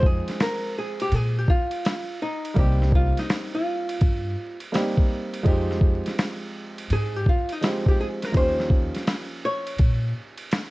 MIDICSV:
0, 0, Header, 1, 5, 480
1, 0, Start_track
1, 0, Key_signature, -4, "minor"
1, 0, Tempo, 722892
1, 1702, Time_signature, 4, 2, 24, 8
1, 7107, End_track
2, 0, Start_track
2, 0, Title_t, "Hollow-body jazz guitar"
2, 0, Program_c, 0, 26
2, 41, Note_on_c, 0, 68, 90
2, 278, Note_off_c, 0, 68, 0
2, 281, Note_on_c, 0, 70, 96
2, 518, Note_off_c, 0, 70, 0
2, 521, Note_on_c, 0, 68, 93
2, 671, Note_off_c, 0, 68, 0
2, 674, Note_on_c, 0, 67, 96
2, 759, Note_off_c, 0, 67, 0
2, 759, Note_on_c, 0, 68, 91
2, 919, Note_off_c, 0, 68, 0
2, 919, Note_on_c, 0, 67, 83
2, 994, Note_off_c, 0, 67, 0
2, 994, Note_on_c, 0, 65, 82
2, 1473, Note_off_c, 0, 65, 0
2, 1475, Note_on_c, 0, 63, 77
2, 1716, Note_off_c, 0, 63, 0
2, 1718, Note_on_c, 0, 67, 88
2, 1934, Note_off_c, 0, 67, 0
2, 1959, Note_on_c, 0, 65, 87
2, 2116, Note_off_c, 0, 65, 0
2, 2116, Note_on_c, 0, 63, 68
2, 2352, Note_off_c, 0, 63, 0
2, 2355, Note_on_c, 0, 65, 68
2, 3040, Note_off_c, 0, 65, 0
2, 4599, Note_on_c, 0, 68, 93
2, 4756, Note_off_c, 0, 68, 0
2, 4756, Note_on_c, 0, 67, 75
2, 4833, Note_off_c, 0, 67, 0
2, 4840, Note_on_c, 0, 65, 71
2, 4995, Note_off_c, 0, 65, 0
2, 4995, Note_on_c, 0, 63, 75
2, 5234, Note_off_c, 0, 63, 0
2, 5235, Note_on_c, 0, 67, 76
2, 5313, Note_off_c, 0, 67, 0
2, 5316, Note_on_c, 0, 68, 83
2, 5357, Note_off_c, 0, 68, 0
2, 5474, Note_on_c, 0, 70, 83
2, 5552, Note_off_c, 0, 70, 0
2, 5556, Note_on_c, 0, 72, 103
2, 6273, Note_off_c, 0, 72, 0
2, 6276, Note_on_c, 0, 73, 95
2, 6962, Note_off_c, 0, 73, 0
2, 7107, End_track
3, 0, Start_track
3, 0, Title_t, "Upright piano"
3, 0, Program_c, 1, 0
3, 0, Note_on_c, 1, 53, 60
3, 0, Note_on_c, 1, 56, 61
3, 0, Note_on_c, 1, 60, 55
3, 0, Note_on_c, 1, 63, 59
3, 0, Note_on_c, 1, 79, 65
3, 1669, Note_off_c, 1, 53, 0
3, 1673, Note_off_c, 1, 56, 0
3, 1677, Note_off_c, 1, 60, 0
3, 1681, Note_off_c, 1, 63, 0
3, 1685, Note_off_c, 1, 79, 0
3, 1687, Note_on_c, 1, 55, 67
3, 1694, Note_on_c, 1, 58, 59
3, 1703, Note_on_c, 1, 60, 57
3, 1710, Note_on_c, 1, 63, 56
3, 1718, Note_on_c, 1, 67, 65
3, 3108, Note_off_c, 1, 55, 0
3, 3112, Note_off_c, 1, 58, 0
3, 3116, Note_off_c, 1, 60, 0
3, 3120, Note_off_c, 1, 63, 0
3, 3123, Note_off_c, 1, 67, 0
3, 3133, Note_on_c, 1, 55, 61
3, 3136, Note_on_c, 1, 58, 54
3, 3140, Note_on_c, 1, 60, 51
3, 3144, Note_on_c, 1, 63, 55
3, 3148, Note_on_c, 1, 67, 63
3, 3606, Note_on_c, 1, 53, 75
3, 3610, Note_off_c, 1, 60, 0
3, 3613, Note_on_c, 1, 56, 69
3, 3617, Note_off_c, 1, 55, 0
3, 3619, Note_off_c, 1, 58, 0
3, 3619, Note_off_c, 1, 63, 0
3, 3620, Note_on_c, 1, 60, 69
3, 3625, Note_off_c, 1, 67, 0
3, 3629, Note_on_c, 1, 63, 74
3, 3635, Note_on_c, 1, 67, 83
3, 5027, Note_off_c, 1, 53, 0
3, 5031, Note_off_c, 1, 56, 0
3, 5035, Note_off_c, 1, 60, 0
3, 5039, Note_off_c, 1, 63, 0
3, 5042, Note_off_c, 1, 67, 0
3, 5054, Note_on_c, 1, 53, 49
3, 5056, Note_on_c, 1, 56, 44
3, 5061, Note_on_c, 1, 60, 47
3, 5065, Note_on_c, 1, 63, 46
3, 5070, Note_on_c, 1, 67, 50
3, 5514, Note_off_c, 1, 53, 0
3, 5524, Note_on_c, 1, 53, 59
3, 5532, Note_on_c, 1, 58, 58
3, 5538, Note_off_c, 1, 63, 0
3, 5539, Note_off_c, 1, 56, 0
3, 5540, Note_on_c, 1, 61, 55
3, 5542, Note_off_c, 1, 60, 0
3, 5546, Note_off_c, 1, 67, 0
3, 5548, Note_on_c, 1, 63, 58
3, 5556, Note_on_c, 1, 67, 64
3, 7107, Note_off_c, 1, 53, 0
3, 7107, Note_off_c, 1, 58, 0
3, 7107, Note_off_c, 1, 61, 0
3, 7107, Note_off_c, 1, 63, 0
3, 7107, Note_off_c, 1, 67, 0
3, 7107, End_track
4, 0, Start_track
4, 0, Title_t, "Upright bass"
4, 0, Program_c, 2, 32
4, 0, Note_on_c, 2, 41, 99
4, 137, Note_off_c, 2, 41, 0
4, 742, Note_on_c, 2, 46, 97
4, 957, Note_off_c, 2, 46, 0
4, 1704, Note_on_c, 2, 36, 101
4, 2058, Note_off_c, 2, 36, 0
4, 2666, Note_on_c, 2, 43, 87
4, 2879, Note_off_c, 2, 43, 0
4, 3624, Note_on_c, 2, 41, 99
4, 3978, Note_off_c, 2, 41, 0
4, 4583, Note_on_c, 2, 44, 85
4, 4797, Note_off_c, 2, 44, 0
4, 5542, Note_on_c, 2, 39, 95
4, 5896, Note_off_c, 2, 39, 0
4, 6503, Note_on_c, 2, 46, 89
4, 6717, Note_off_c, 2, 46, 0
4, 7107, End_track
5, 0, Start_track
5, 0, Title_t, "Drums"
5, 19, Note_on_c, 9, 36, 84
5, 85, Note_off_c, 9, 36, 0
5, 185, Note_on_c, 9, 51, 55
5, 197, Note_on_c, 9, 38, 31
5, 251, Note_off_c, 9, 51, 0
5, 263, Note_off_c, 9, 38, 0
5, 268, Note_on_c, 9, 44, 54
5, 268, Note_on_c, 9, 51, 78
5, 270, Note_on_c, 9, 38, 110
5, 334, Note_off_c, 9, 44, 0
5, 334, Note_off_c, 9, 51, 0
5, 336, Note_off_c, 9, 38, 0
5, 662, Note_on_c, 9, 51, 61
5, 728, Note_off_c, 9, 51, 0
5, 741, Note_on_c, 9, 51, 60
5, 807, Note_off_c, 9, 51, 0
5, 983, Note_on_c, 9, 36, 81
5, 1049, Note_off_c, 9, 36, 0
5, 1135, Note_on_c, 9, 51, 57
5, 1202, Note_off_c, 9, 51, 0
5, 1229, Note_on_c, 9, 44, 51
5, 1229, Note_on_c, 9, 51, 67
5, 1237, Note_on_c, 9, 38, 101
5, 1295, Note_off_c, 9, 44, 0
5, 1295, Note_off_c, 9, 51, 0
5, 1303, Note_off_c, 9, 38, 0
5, 1626, Note_on_c, 9, 51, 64
5, 1692, Note_off_c, 9, 51, 0
5, 1702, Note_on_c, 9, 51, 60
5, 1703, Note_on_c, 9, 36, 101
5, 1768, Note_off_c, 9, 51, 0
5, 1769, Note_off_c, 9, 36, 0
5, 1872, Note_on_c, 9, 38, 30
5, 1938, Note_off_c, 9, 38, 0
5, 1939, Note_on_c, 9, 36, 84
5, 2006, Note_off_c, 9, 36, 0
5, 2106, Note_on_c, 9, 51, 55
5, 2118, Note_on_c, 9, 38, 31
5, 2173, Note_off_c, 9, 51, 0
5, 2185, Note_off_c, 9, 38, 0
5, 2189, Note_on_c, 9, 44, 55
5, 2189, Note_on_c, 9, 51, 73
5, 2191, Note_on_c, 9, 38, 111
5, 2255, Note_off_c, 9, 44, 0
5, 2255, Note_off_c, 9, 51, 0
5, 2258, Note_off_c, 9, 38, 0
5, 2584, Note_on_c, 9, 51, 62
5, 2650, Note_off_c, 9, 51, 0
5, 2662, Note_on_c, 9, 51, 60
5, 2666, Note_on_c, 9, 36, 85
5, 2728, Note_off_c, 9, 51, 0
5, 2733, Note_off_c, 9, 36, 0
5, 3056, Note_on_c, 9, 51, 53
5, 3122, Note_off_c, 9, 51, 0
5, 3147, Note_on_c, 9, 44, 53
5, 3147, Note_on_c, 9, 51, 73
5, 3156, Note_on_c, 9, 38, 108
5, 3213, Note_off_c, 9, 44, 0
5, 3213, Note_off_c, 9, 51, 0
5, 3222, Note_off_c, 9, 38, 0
5, 3303, Note_on_c, 9, 36, 85
5, 3369, Note_off_c, 9, 36, 0
5, 3543, Note_on_c, 9, 51, 59
5, 3610, Note_off_c, 9, 51, 0
5, 3623, Note_on_c, 9, 36, 89
5, 3623, Note_on_c, 9, 51, 61
5, 3689, Note_off_c, 9, 36, 0
5, 3690, Note_off_c, 9, 51, 0
5, 3791, Note_on_c, 9, 38, 30
5, 3857, Note_off_c, 9, 38, 0
5, 3859, Note_on_c, 9, 36, 87
5, 3925, Note_off_c, 9, 36, 0
5, 4023, Note_on_c, 9, 51, 55
5, 4035, Note_on_c, 9, 38, 30
5, 4090, Note_off_c, 9, 51, 0
5, 4102, Note_off_c, 9, 38, 0
5, 4108, Note_on_c, 9, 44, 54
5, 4108, Note_on_c, 9, 51, 70
5, 4110, Note_on_c, 9, 38, 106
5, 4174, Note_off_c, 9, 44, 0
5, 4174, Note_off_c, 9, 51, 0
5, 4176, Note_off_c, 9, 38, 0
5, 4503, Note_on_c, 9, 51, 62
5, 4569, Note_off_c, 9, 51, 0
5, 4582, Note_on_c, 9, 51, 63
5, 4648, Note_off_c, 9, 51, 0
5, 4822, Note_on_c, 9, 36, 84
5, 4889, Note_off_c, 9, 36, 0
5, 4973, Note_on_c, 9, 51, 55
5, 5040, Note_off_c, 9, 51, 0
5, 5064, Note_on_c, 9, 44, 48
5, 5064, Note_on_c, 9, 51, 65
5, 5072, Note_on_c, 9, 38, 119
5, 5130, Note_off_c, 9, 44, 0
5, 5130, Note_off_c, 9, 51, 0
5, 5139, Note_off_c, 9, 38, 0
5, 5221, Note_on_c, 9, 36, 84
5, 5287, Note_off_c, 9, 36, 0
5, 5460, Note_on_c, 9, 51, 63
5, 5467, Note_on_c, 9, 38, 34
5, 5526, Note_off_c, 9, 51, 0
5, 5533, Note_off_c, 9, 38, 0
5, 5539, Note_on_c, 9, 51, 65
5, 5541, Note_on_c, 9, 36, 100
5, 5605, Note_off_c, 9, 51, 0
5, 5607, Note_off_c, 9, 36, 0
5, 5709, Note_on_c, 9, 38, 33
5, 5776, Note_off_c, 9, 38, 0
5, 5777, Note_on_c, 9, 36, 91
5, 5843, Note_off_c, 9, 36, 0
5, 5940, Note_on_c, 9, 51, 55
5, 5952, Note_on_c, 9, 38, 32
5, 6006, Note_off_c, 9, 51, 0
5, 6018, Note_off_c, 9, 38, 0
5, 6024, Note_on_c, 9, 44, 53
5, 6024, Note_on_c, 9, 51, 73
5, 6026, Note_on_c, 9, 38, 109
5, 6091, Note_off_c, 9, 44, 0
5, 6091, Note_off_c, 9, 51, 0
5, 6093, Note_off_c, 9, 38, 0
5, 6419, Note_on_c, 9, 51, 63
5, 6485, Note_off_c, 9, 51, 0
5, 6497, Note_on_c, 9, 51, 63
5, 6503, Note_on_c, 9, 36, 82
5, 6563, Note_off_c, 9, 51, 0
5, 6569, Note_off_c, 9, 36, 0
5, 6889, Note_on_c, 9, 51, 58
5, 6955, Note_off_c, 9, 51, 0
5, 6981, Note_on_c, 9, 44, 49
5, 6981, Note_on_c, 9, 51, 72
5, 6990, Note_on_c, 9, 38, 117
5, 7047, Note_off_c, 9, 44, 0
5, 7047, Note_off_c, 9, 51, 0
5, 7056, Note_off_c, 9, 38, 0
5, 7107, End_track
0, 0, End_of_file